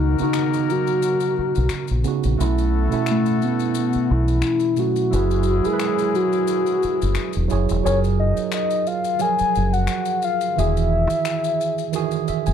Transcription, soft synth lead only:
0, 0, Header, 1, 2, 480
1, 0, Start_track
1, 0, Tempo, 681818
1, 1678, Time_signature, 4, 2, 24, 8
1, 8824, End_track
2, 0, Start_track
2, 0, Title_t, "Soft synth lead"
2, 0, Program_c, 0, 80
2, 0, Note_on_c, 0, 63, 102
2, 118, Note_off_c, 0, 63, 0
2, 162, Note_on_c, 0, 63, 108
2, 503, Note_on_c, 0, 66, 115
2, 514, Note_off_c, 0, 63, 0
2, 1451, Note_off_c, 0, 66, 0
2, 2188, Note_on_c, 0, 57, 82
2, 2420, Note_on_c, 0, 59, 83
2, 2430, Note_off_c, 0, 57, 0
2, 2649, Note_off_c, 0, 59, 0
2, 2663, Note_on_c, 0, 59, 99
2, 2896, Note_on_c, 0, 64, 114
2, 2907, Note_off_c, 0, 59, 0
2, 3374, Note_on_c, 0, 66, 96
2, 3385, Note_off_c, 0, 64, 0
2, 3982, Note_on_c, 0, 68, 116
2, 3993, Note_off_c, 0, 66, 0
2, 4335, Note_on_c, 0, 66, 123
2, 4346, Note_off_c, 0, 68, 0
2, 5287, Note_off_c, 0, 66, 0
2, 5526, Note_on_c, 0, 73, 92
2, 5624, Note_off_c, 0, 73, 0
2, 5769, Note_on_c, 0, 75, 92
2, 5987, Note_off_c, 0, 75, 0
2, 6013, Note_on_c, 0, 75, 91
2, 6246, Note_on_c, 0, 77, 106
2, 6257, Note_off_c, 0, 75, 0
2, 6485, Note_on_c, 0, 80, 127
2, 6496, Note_off_c, 0, 77, 0
2, 6851, Note_on_c, 0, 78, 105
2, 6861, Note_off_c, 0, 80, 0
2, 7199, Note_off_c, 0, 78, 0
2, 7209, Note_on_c, 0, 77, 100
2, 7451, Note_on_c, 0, 76, 113
2, 7461, Note_off_c, 0, 77, 0
2, 8824, Note_off_c, 0, 76, 0
2, 8824, End_track
0, 0, End_of_file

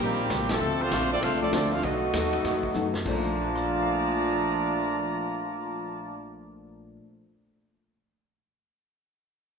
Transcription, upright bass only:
0, 0, Header, 1, 2, 480
1, 0, Start_track
1, 0, Key_signature, -2, "major"
1, 0, Tempo, 306592
1, 950, Time_signature, 4, 2, 24, 8
1, 15000, End_track
2, 0, Start_track
2, 0, Title_t, "Upright bass"
2, 0, Program_c, 0, 32
2, 0, Note_on_c, 0, 34, 97
2, 455, Note_off_c, 0, 34, 0
2, 469, Note_on_c, 0, 36, 111
2, 626, Note_off_c, 0, 36, 0
2, 626, Note_on_c, 0, 34, 67
2, 780, Note_off_c, 0, 34, 0
2, 790, Note_on_c, 0, 31, 78
2, 934, Note_off_c, 0, 31, 0
2, 943, Note_on_c, 0, 38, 89
2, 1412, Note_off_c, 0, 38, 0
2, 1433, Note_on_c, 0, 34, 97
2, 1897, Note_off_c, 0, 34, 0
2, 1910, Note_on_c, 0, 36, 92
2, 2376, Note_off_c, 0, 36, 0
2, 2385, Note_on_c, 0, 38, 108
2, 2853, Note_off_c, 0, 38, 0
2, 2861, Note_on_c, 0, 35, 92
2, 3331, Note_off_c, 0, 35, 0
2, 3340, Note_on_c, 0, 39, 97
2, 3810, Note_off_c, 0, 39, 0
2, 3822, Note_on_c, 0, 41, 103
2, 4287, Note_off_c, 0, 41, 0
2, 4297, Note_on_c, 0, 42, 101
2, 4769, Note_off_c, 0, 42, 0
2, 4780, Note_on_c, 0, 34, 104
2, 10911, Note_off_c, 0, 34, 0
2, 15000, End_track
0, 0, End_of_file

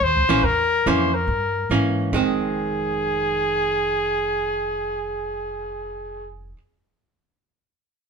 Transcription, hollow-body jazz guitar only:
0, 0, Header, 1, 2, 480
1, 0, Start_track
1, 0, Key_signature, -4, "minor"
1, 0, Tempo, 425532
1, 486, Time_signature, 4, 2, 24, 8
1, 9126, End_track
2, 0, Start_track
2, 0, Title_t, "Hollow-body jazz guitar"
2, 0, Program_c, 0, 26
2, 326, Note_on_c, 0, 52, 69
2, 334, Note_on_c, 0, 58, 69
2, 338, Note_on_c, 0, 61, 75
2, 473, Note_off_c, 0, 52, 0
2, 477, Note_off_c, 0, 58, 0
2, 479, Note_off_c, 0, 61, 0
2, 977, Note_on_c, 0, 52, 64
2, 983, Note_on_c, 0, 58, 68
2, 992, Note_on_c, 0, 61, 66
2, 1251, Note_off_c, 0, 52, 0
2, 1254, Note_off_c, 0, 58, 0
2, 1259, Note_off_c, 0, 61, 0
2, 1928, Note_on_c, 0, 52, 52
2, 1934, Note_on_c, 0, 58, 51
2, 1937, Note_on_c, 0, 61, 56
2, 2398, Note_off_c, 0, 52, 0
2, 2402, Note_on_c, 0, 51, 60
2, 2408, Note_off_c, 0, 58, 0
2, 2410, Note_off_c, 0, 61, 0
2, 2418, Note_on_c, 0, 56, 60
2, 2435, Note_on_c, 0, 60, 61
2, 7402, Note_off_c, 0, 51, 0
2, 7417, Note_off_c, 0, 56, 0
2, 7435, Note_off_c, 0, 60, 0
2, 9126, End_track
0, 0, End_of_file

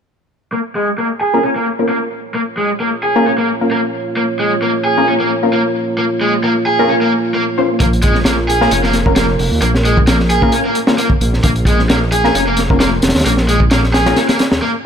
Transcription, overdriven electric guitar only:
0, 0, Header, 1, 2, 480
1, 0, Start_track
1, 0, Key_signature, -5, "minor"
1, 0, Tempo, 454545
1, 562, Time_signature, 4, 2, 24, 8
1, 15691, End_track
2, 0, Start_track
2, 0, Title_t, "Overdriven electric guitar"
2, 0, Program_c, 0, 29
2, 555, Note_on_c, 0, 58, 73
2, 608, Note_off_c, 0, 58, 0
2, 796, Note_on_c, 0, 56, 67
2, 921, Note_off_c, 0, 56, 0
2, 1037, Note_on_c, 0, 58, 72
2, 1123, Note_off_c, 0, 58, 0
2, 1277, Note_on_c, 0, 68, 90
2, 1508, Note_off_c, 0, 68, 0
2, 1515, Note_on_c, 0, 61, 73
2, 1569, Note_off_c, 0, 61, 0
2, 1645, Note_on_c, 0, 58, 74
2, 1753, Note_off_c, 0, 58, 0
2, 1994, Note_on_c, 0, 58, 78
2, 2082, Note_off_c, 0, 58, 0
2, 2477, Note_on_c, 0, 58, 79
2, 2529, Note_off_c, 0, 58, 0
2, 2719, Note_on_c, 0, 56, 67
2, 2843, Note_off_c, 0, 56, 0
2, 2958, Note_on_c, 0, 58, 80
2, 3043, Note_off_c, 0, 58, 0
2, 3200, Note_on_c, 0, 68, 95
2, 3430, Note_off_c, 0, 68, 0
2, 3441, Note_on_c, 0, 61, 76
2, 3491, Note_off_c, 0, 61, 0
2, 3570, Note_on_c, 0, 58, 73
2, 3676, Note_off_c, 0, 58, 0
2, 3921, Note_on_c, 0, 58, 74
2, 4005, Note_off_c, 0, 58, 0
2, 4401, Note_on_c, 0, 58, 80
2, 4451, Note_off_c, 0, 58, 0
2, 4641, Note_on_c, 0, 56, 70
2, 4764, Note_off_c, 0, 56, 0
2, 4881, Note_on_c, 0, 58, 75
2, 4965, Note_off_c, 0, 58, 0
2, 5119, Note_on_c, 0, 68, 95
2, 5349, Note_off_c, 0, 68, 0
2, 5361, Note_on_c, 0, 61, 76
2, 5412, Note_off_c, 0, 61, 0
2, 5489, Note_on_c, 0, 58, 74
2, 5595, Note_off_c, 0, 58, 0
2, 5841, Note_on_c, 0, 58, 81
2, 5925, Note_off_c, 0, 58, 0
2, 6318, Note_on_c, 0, 58, 77
2, 6370, Note_off_c, 0, 58, 0
2, 6558, Note_on_c, 0, 56, 72
2, 6682, Note_off_c, 0, 56, 0
2, 6798, Note_on_c, 0, 58, 78
2, 6883, Note_off_c, 0, 58, 0
2, 7034, Note_on_c, 0, 68, 91
2, 7267, Note_off_c, 0, 68, 0
2, 7276, Note_on_c, 0, 61, 76
2, 7329, Note_off_c, 0, 61, 0
2, 7407, Note_on_c, 0, 58, 71
2, 7514, Note_off_c, 0, 58, 0
2, 7757, Note_on_c, 0, 58, 76
2, 7843, Note_off_c, 0, 58, 0
2, 8238, Note_on_c, 0, 58, 76
2, 8290, Note_off_c, 0, 58, 0
2, 8478, Note_on_c, 0, 56, 71
2, 8602, Note_off_c, 0, 56, 0
2, 8717, Note_on_c, 0, 58, 79
2, 8803, Note_off_c, 0, 58, 0
2, 8959, Note_on_c, 0, 68, 87
2, 9189, Note_off_c, 0, 68, 0
2, 9200, Note_on_c, 0, 61, 77
2, 9251, Note_off_c, 0, 61, 0
2, 9329, Note_on_c, 0, 58, 71
2, 9435, Note_off_c, 0, 58, 0
2, 9679, Note_on_c, 0, 58, 75
2, 9764, Note_off_c, 0, 58, 0
2, 10157, Note_on_c, 0, 58, 81
2, 10209, Note_off_c, 0, 58, 0
2, 10400, Note_on_c, 0, 56, 74
2, 10523, Note_off_c, 0, 56, 0
2, 10638, Note_on_c, 0, 58, 79
2, 10724, Note_off_c, 0, 58, 0
2, 10880, Note_on_c, 0, 68, 90
2, 11110, Note_off_c, 0, 68, 0
2, 11120, Note_on_c, 0, 61, 79
2, 11171, Note_off_c, 0, 61, 0
2, 11247, Note_on_c, 0, 58, 76
2, 11354, Note_off_c, 0, 58, 0
2, 11598, Note_on_c, 0, 58, 79
2, 11683, Note_off_c, 0, 58, 0
2, 12080, Note_on_c, 0, 58, 78
2, 12131, Note_off_c, 0, 58, 0
2, 12319, Note_on_c, 0, 56, 68
2, 12443, Note_off_c, 0, 56, 0
2, 12561, Note_on_c, 0, 58, 77
2, 12645, Note_off_c, 0, 58, 0
2, 12800, Note_on_c, 0, 68, 99
2, 13030, Note_off_c, 0, 68, 0
2, 13040, Note_on_c, 0, 61, 74
2, 13091, Note_off_c, 0, 61, 0
2, 13169, Note_on_c, 0, 58, 75
2, 13275, Note_off_c, 0, 58, 0
2, 13519, Note_on_c, 0, 58, 78
2, 13604, Note_off_c, 0, 58, 0
2, 14000, Note_on_c, 0, 58, 76
2, 14051, Note_off_c, 0, 58, 0
2, 14239, Note_on_c, 0, 56, 72
2, 14363, Note_off_c, 0, 56, 0
2, 14480, Note_on_c, 0, 58, 81
2, 14564, Note_off_c, 0, 58, 0
2, 14716, Note_on_c, 0, 68, 95
2, 14948, Note_off_c, 0, 68, 0
2, 14958, Note_on_c, 0, 61, 72
2, 15010, Note_off_c, 0, 61, 0
2, 15087, Note_on_c, 0, 58, 74
2, 15194, Note_off_c, 0, 58, 0
2, 15440, Note_on_c, 0, 58, 82
2, 15524, Note_off_c, 0, 58, 0
2, 15691, End_track
0, 0, End_of_file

